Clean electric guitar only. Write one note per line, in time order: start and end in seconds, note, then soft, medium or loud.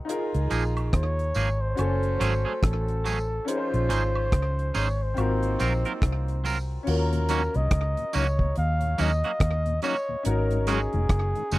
0.50 0.63 F3 medium
0.50 0.63 A#3 medium
0.50 0.63 D#4 medium
0.50 0.63 G#4 medium
1.35 1.48 F3 medium
1.35 1.48 A#3 medium
1.35 1.48 D#4 medium
1.35 1.48 G#4 medium
2.20 2.32 F#3 medium
2.20 2.33 A3 medium
2.20 2.33 C#4 medium
2.20 2.33 G#4 loud
2.45 2.53 F#3 soft
2.45 2.52 A3 medium
2.45 2.52 C#4 medium
2.45 2.52 G#4 medium
3.05 3.17 F#3 medium
3.05 3.17 A3 medium
3.05 3.18 C#4 medium
3.05 3.18 G#4 medium
3.89 4.02 C#4 medium
3.89 4.02 D#4 medium
3.89 4.02 G#4 medium
3.89 4.03 C5 medium
4.74 4.87 C#4 medium
4.74 4.87 D#4 medium
4.74 4.87 G#4 loud
4.74 4.87 C5 loud
5.59 5.72 F#3 medium
5.59 5.72 C4 medium
5.59 5.72 F4 medium
5.59 5.73 A#4 medium
5.86 5.92 F#3 medium
5.86 5.92 C4 medium
5.86 5.92 F4 medium
5.86 5.92 A#4 medium
6.44 6.56 F#3 medium
6.44 6.57 C4 medium
6.44 6.57 F4 medium
6.44 6.57 A#4 medium
7.29 7.41 F#3 loud
7.29 7.42 A#3 medium
7.29 7.42 C#4 loud
7.29 7.42 F#4 medium
8.13 8.26 F#3 medium
8.13 8.26 A#3 loud
8.13 8.26 C#4 loud
8.13 8.26 F#4 loud
8.98 9.10 F#3 medium
8.98 9.11 A#3 medium
8.98 9.11 C#4 loud
8.98 9.11 F#4 loud
9.24 9.31 F#3 medium
9.24 9.31 A#3 medium
9.24 9.31 C#4 medium
9.24 9.30 F#4 medium
9.83 9.95 F#3 medium
9.83 9.95 A#3 medium
9.83 9.95 C#4 medium
9.83 9.96 F#4 medium
10.67 10.79 D#3 medium
10.67 10.80 G#3 medium
10.67 10.80 C#4 loud
10.67 10.80 F#4 loud
11.52 11.59 D#3 medium
11.52 11.59 G#3 medium
11.52 11.59 C#4 medium
11.52 11.59 F#4 loud